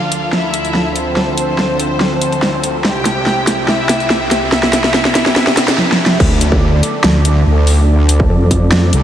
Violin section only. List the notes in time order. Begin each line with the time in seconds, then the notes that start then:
Already playing: F4 F5
0.33 E4 E5
0.96 C4 C5
2.84 G4 G5
3.68 E4 E5
4.31 E4 E5